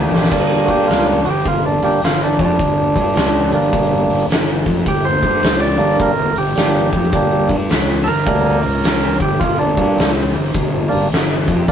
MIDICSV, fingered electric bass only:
0, 0, Header, 1, 2, 480
1, 0, Start_track
1, 0, Key_signature, -2, "minor"
1, 0, Tempo, 568182
1, 269, Time_signature, 4, 2, 24, 8
1, 9900, End_track
2, 0, Start_track
2, 0, Title_t, "Fingered electric bass"
2, 0, Program_c, 0, 33
2, 93, Note_on_c, 0, 34, 86
2, 226, Note_off_c, 0, 34, 0
2, 266, Note_on_c, 0, 31, 80
2, 554, Note_off_c, 0, 31, 0
2, 575, Note_on_c, 0, 43, 88
2, 736, Note_off_c, 0, 43, 0
2, 753, Note_on_c, 0, 37, 91
2, 1038, Note_off_c, 0, 37, 0
2, 1060, Note_on_c, 0, 31, 77
2, 1219, Note_off_c, 0, 31, 0
2, 1230, Note_on_c, 0, 31, 83
2, 1516, Note_off_c, 0, 31, 0
2, 1541, Note_on_c, 0, 31, 76
2, 1699, Note_off_c, 0, 31, 0
2, 1710, Note_on_c, 0, 31, 80
2, 1996, Note_off_c, 0, 31, 0
2, 2021, Note_on_c, 0, 41, 94
2, 2179, Note_off_c, 0, 41, 0
2, 2193, Note_on_c, 0, 31, 84
2, 2478, Note_off_c, 0, 31, 0
2, 2499, Note_on_c, 0, 43, 86
2, 2658, Note_off_c, 0, 43, 0
2, 2667, Note_on_c, 0, 37, 95
2, 2955, Note_off_c, 0, 37, 0
2, 2973, Note_on_c, 0, 31, 78
2, 3135, Note_off_c, 0, 31, 0
2, 3152, Note_on_c, 0, 31, 75
2, 3438, Note_off_c, 0, 31, 0
2, 3458, Note_on_c, 0, 31, 78
2, 3618, Note_off_c, 0, 31, 0
2, 3622, Note_on_c, 0, 31, 74
2, 3912, Note_off_c, 0, 31, 0
2, 3944, Note_on_c, 0, 41, 92
2, 4101, Note_off_c, 0, 41, 0
2, 4109, Note_on_c, 0, 31, 85
2, 4396, Note_off_c, 0, 31, 0
2, 4417, Note_on_c, 0, 43, 90
2, 4577, Note_off_c, 0, 43, 0
2, 4587, Note_on_c, 0, 37, 95
2, 4875, Note_off_c, 0, 37, 0
2, 4892, Note_on_c, 0, 31, 74
2, 5055, Note_off_c, 0, 31, 0
2, 5064, Note_on_c, 0, 31, 76
2, 5353, Note_off_c, 0, 31, 0
2, 5379, Note_on_c, 0, 31, 76
2, 5538, Note_off_c, 0, 31, 0
2, 5555, Note_on_c, 0, 31, 79
2, 5839, Note_off_c, 0, 31, 0
2, 5854, Note_on_c, 0, 41, 89
2, 6016, Note_off_c, 0, 41, 0
2, 6022, Note_on_c, 0, 31, 88
2, 6313, Note_off_c, 0, 31, 0
2, 6332, Note_on_c, 0, 43, 89
2, 6495, Note_off_c, 0, 43, 0
2, 6515, Note_on_c, 0, 37, 93
2, 6799, Note_off_c, 0, 37, 0
2, 6823, Note_on_c, 0, 31, 80
2, 6980, Note_off_c, 0, 31, 0
2, 6987, Note_on_c, 0, 38, 91
2, 7275, Note_off_c, 0, 38, 0
2, 7297, Note_on_c, 0, 37, 89
2, 7744, Note_off_c, 0, 37, 0
2, 7776, Note_on_c, 0, 31, 92
2, 7937, Note_off_c, 0, 31, 0
2, 7947, Note_on_c, 0, 31, 88
2, 8235, Note_off_c, 0, 31, 0
2, 8254, Note_on_c, 0, 43, 84
2, 8416, Note_off_c, 0, 43, 0
2, 8424, Note_on_c, 0, 37, 87
2, 8713, Note_off_c, 0, 37, 0
2, 8734, Note_on_c, 0, 31, 78
2, 8896, Note_off_c, 0, 31, 0
2, 8905, Note_on_c, 0, 31, 82
2, 9193, Note_off_c, 0, 31, 0
2, 9224, Note_on_c, 0, 31, 72
2, 9381, Note_off_c, 0, 31, 0
2, 9405, Note_on_c, 0, 31, 83
2, 9684, Note_off_c, 0, 31, 0
2, 9697, Note_on_c, 0, 41, 88
2, 9857, Note_off_c, 0, 41, 0
2, 9867, Note_on_c, 0, 31, 88
2, 9900, Note_off_c, 0, 31, 0
2, 9900, End_track
0, 0, End_of_file